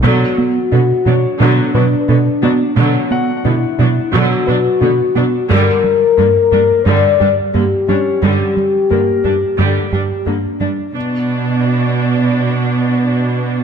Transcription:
X:1
M:4/4
L:1/8
Q:1/4=88
K:Bm
V:1 name="Grand piano"
z3 c4- c- | c [Ff]6 z | z3 _B4 [Cc]- | [Cc]2 [_B,_B]6 |
z8 |]
V:2 name="French horn section"
F4 D4 | D2 E2 F4 | _B4 d2 G2 | G4 G2 D2 |
B,8 |]
V:3 name="Synth arpeggio sound"
B, z D D B, B D F | B, z D D B, B D F | G, z _B, B, G, G B, D | G, z _B, B, G, G B, D |
z8 |]
V:4 name="Viola section" clef=bass
[D,F,] z [D,B,] [F,D] [D,F,] [F,D] [D,B,] [F,D] | [D,F,] z [D,B,] [F,D] [D,F,] [F,D] [D,B,] [F,D] | [D,G,] z [D,_B,] [G,D] [D,G,] [G,D] [D,B,] [G,D] | [D,G,] z [D,_B,] [G,D] [D,G,] [G,D] [D,B,] [G,D] |
D8 |]
V:5 name="Analog synth bass" clef=bass
B,, B, B,, B,, B,, B,, B,, B, | B,, B, B,, B,, B,, B,, B,, B, | G,, G, G,, G,, G,, G,, G,, G, | G,, G, G,, G,, G,, G,, G,, G, |
z8 |]
V:6 name="Cello section" clef=bass
B,, z B,, B,, B,, B,, B,, B,, | B,, z B,, B,, B,, B,, B,, B,, | G,, z G,, G,, G,, G,, G,, G,, | G,, z G,, G,, G,, G,, G,, G,, |
B,,8 |]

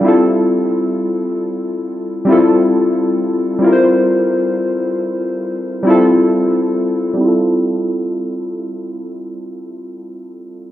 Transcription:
X:1
M:4/4
L:1/16
Q:"Swing 16ths" 1/4=67
K:F
V:1 name="Synth keys"
[G,CEFA]6 z4 [G,CEFA]4- [G,CEFA] z | [G,CEFBc]6 z4 [G,CEFA]4- [G,CEFA] z | [G,CEFA]16 |]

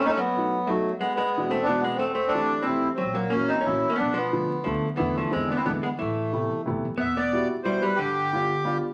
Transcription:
X:1
M:3/4
L:1/16
Q:"Swing" 1/4=181
K:Am
V:1 name="Accordion"
z/2 ^D/2 ^C B,6 A,3 z | B,2 B,4 C2 D2 B,2 | C2 C2 D4 E3 z | C2 ^A,2 ^C2 ^D2 E3 C |
D2 B,6 A,3 z | B,2 A,2 C2 D E D2 B,2 | A,8 z4 | [K:Em] e2 d4 z2 c2 B2 |
G8- G2 z2 |]
V:2 name="Hollow-body jazz guitar"
z/2 B,/2 A, ^F,6 F,3 z | ^G,2 G,4 A,2 B,2 G,2 | A,2 A,2 A,4 C3 z | ^F,2 F,2 ^A,2 C2 ^C3 A, |
B,2 F,6 F,3 z | E,2 F,2 ^G,2 B, C B,2 G,2 | E,8 z4 | [K:Em] B,2 B,4 z2 G,2 G,2 |
D,8- D,2 z2 |]
V:3 name="Upright piano"
z4 [^F,A,B,^D]2 z2 [F,A,B,D]2 z2 | z4 [B,,E,^G,B,D]2 z2 [B,,E,G,B,D]2 z2 | z4 [E,G,A,C]2 z2 [E,G,A,C]2 z2 | z4 [E,^F,^A,^C]2 z2 [E,F,A,C]2 z2 |
z4 [D,F,A,B,]2 z2 [D,F,A,B,]2 z2 | [D,E,A,B,]4 [D,E,^G,B,]2 z2 [D,E,G,B,]2 z2 | z4 [C,E,A,B,]2 z2 [C,E,A,B,]2 z2 | [K:Em] z4 [G,B,EF]2 z2 [G,B,EF]2 z2 |
z4 [G,B,D=F]2 z2 [G,B,DF]2 z2 |]
V:4 name="Upright bass" clef=bass
z12 | z12 | z12 | ^A,,,8 A,,,2 z2 |
B,,,8 D,,2 z2 | E,,4 E,,4 E,,2 z2 | A,,,8 G,,,2 E,,,2 | [K:Em] E,,,8 z4 |
G,,,8 z4 |]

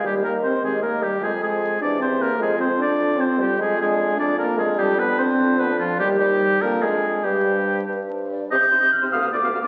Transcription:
X:1
M:6/8
L:1/16
Q:3/8=100
K:Fdor
V:1 name="Flute"
z2 e6 e4 | c2 c4 c2 c4 | c2 c6 c4 | [K:Cm] z2 d6 d4 |
d2 d6 d4 | z2 c4 d2 d4 | z2 c4 =B2 c2 d2 | g'4 f'2 e'2 d'4 |]
V:2 name="Oboe"
G2 B2 c2 A2 B2 G2 | A2 A4 d2 c2 B2 | A2 c2 d4 c2 G2 | [K:Cm] A2 A4 d2 B2 A2 |
G2 =B2 c4 B2 F2 | G2 G4 B2 A4 | G6 z6 | e e c e z c f f d f f z |]
V:3 name="Clarinet"
z2 G6 G4 | F2 F4 G2 G4 | F2 F6 F4 | [K:Cm] z2 D6 D4 |
D2 D6 D4 | z2 E4 D2 D4 | z2 D4 D2 D4 | G G E G z E G G F G G F |]
V:4 name="French horn"
G,2 B,2 C2 A,2 B,2 G,2 | A,2 A,4 D2 C2 B,2 | A,2 C2 D4 C2 G,2 | [K:Cm] A,2 A,4 D2 B,2 A,2 |
G,2 =B,2 C4 B,2 F,2 | G,2 G,4 B,2 A,4 | G,6 z6 | C C C C z C =B, B, B, B, B, B, |]
V:5 name="Bassoon" clef=bass
E,,4- E,, z E,,4- E,, z | F,,4- F,, z =E,,4- E,, z | F,,4- F,, z F,,4- F,, z | [K:Cm] F,,4- F,, z F,,4- F,, z |
F,,4- F,, z F,,4- F,, z | E,,4- E,, z F,,4- F,, z | G,,4- G,, z G,,4- G,, z | C, C, C, C, z C, D,, D,, D,, D,, D,, D,, |]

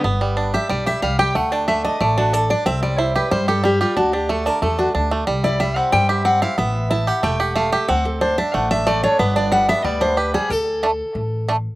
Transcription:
X:1
M:4/4
L:1/8
Q:1/4=184
K:G
V:1 name="Steel-string acoustic guitar"
z3 e d e =f g | f g e _e d F A d | e d c B c A G =F | F G A _B A F z2 |
z d e f g e f =f | e2 a f g f =f e | f A c e f e d ^c | B d f e d c B _A |
A6 z2 |]
V:2 name="Five-string banjo"
B, G, D G G, G G, G | A, D A, D A, D D D | C G, E G G, G G, G | D D A, D A, D D A, |
G, E G, C G, G C E | B,2 E G A, G A, G | C2 D D A, D A, D | B, D G, B, G, D G G, |
z2 [A,D] z3 [A,D] z |]
V:3 name="Upright bass" clef=bass
G,,,4 B,,,2 C,,2 | D,,4 A,,,4 | C,,4 G,,4 | D,,4 E,,2 D,,2 |
C,,4 G,,4 | A,,,4 E,,,4 | D,,4 A,,,4 | G,,,4 D,,4 |
D,,4 A,,,4 |]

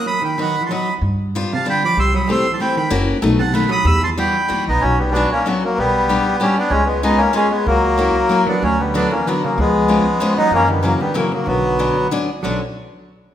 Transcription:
X:1
M:3/4
L:1/16
Q:"Swing" 1/4=189
K:Em
V:1 name="Bandoneon"
[b^d']2 [gb]2 [fb]3 [ac'] [bd']3 z | z6 [=fa]2 [gb]2 [bd']2 | [c'e']2 [b^d']2 [c'e']3 [ac'] [gb]2 [gb]2 | z6 [fa]2 [fb]2 [b^d']2 |
[be']2 [ac']2 [gb]6 [B,^D]2 | [K:Bm] [F,C]2 [G,B,]2 [B,D]2 [^A,C]2 [F,B,]2 [F,A,]2 | [G,B,]8 [G,C]2 [B,D]2 | [^G,C]2 [G,B,]2 [B,^D]2 [^A,C]2 [G,C]2 [G,B,]2 |
[F,^A,]8- [F,A,]2 [B,D]2 | [F,C]2 [G,B,]2 [B,D]2 [^A,C]2 [F,B,]2 [F,A,]2 | [^G,B,]8- [G,B,]2 [B,^D]2 | [^A,C]2 [G,B,]2 [F,A,]2 [G,B,]2 [F,A,]2 [F,A,]2 |
[F,B,]8 z4 | D2 z8 z2 |]
V:2 name="Steel-string acoustic guitar"
z4 [F,B,^DF]2 z2 [F,B,DF]2 z2 | z4 [G,B,D=F]2 z2 [G,B,DF]2 z2 | z4 [A,CEG]2 z2 [A,CEG]2 z2 | [^A,^CEF]4 [=A,B,^DF]2 z2 [A,B,DF]2 z2 |
z4 [G,B,EF]2 z2 [G,B,EF]2 z2 | [K:Bm] z4 [F,B,CDF]2 z2 [F,B,CDF]2 z2 | z4 [G,B,DFG]2 z2 [G,B,DFG]2 z2 | z4 [^G,B,C^E^G]2 z2 [G,B,CEG]2 z2 |
z4 [F,^A,CEF]2 z2 [F,A,CEF]2 z2 | z4 [D,F,B,DF]2 z2 [D,F,B,DF]2 z2 | z4 [^E,^G,B,C^E]2 z2 [E,G,B,CE]2 z2 | z4 [E,F,^A,CE]2 z2 [E,F,A,CE]2 z2 |
z4 [D,F,B,CD]2 z2 [D,F,B,CD]2 z2 | [D,F,B,C]2 z8 z2 |]
V:3 name="Hollow-body jazz guitar" clef=bass
F,2 ^D,2 D,3 E, F,3 z | z6 C,2 D,2 =F,2 | G,2 F,2 G,3 E, E,2 ^D,2 | z6 C,2 ^D,2 F,2 |
G,2 E,2 E,6 z2 | [K:Bm] z12 | z12 | z12 |
z8 z2 F,2 | F,2 D,2 F,2 E,2 D,2 C,2 | ^E,8- E,2 F,2 | E,2 D,2 C,2 D,2 C,2 C,2 |
D,8 z4 | F,2 z8 z2 |]
V:4 name="Upright bass" clef=bass
z12 | G,,8 z4 | C,,8 z4 | F,,,4 B,,,8 |
E,,8 ^D,,2 B,,,2 | [K:Bm] B,,,8 z4 | B,,,8 z4 | C,,8 z4 |
C,,8 z4 | D,,8 z4 | C,,8 z4 | F,,8 z4 |
B,,,8 z4 | B,,,2 z8 z2 |]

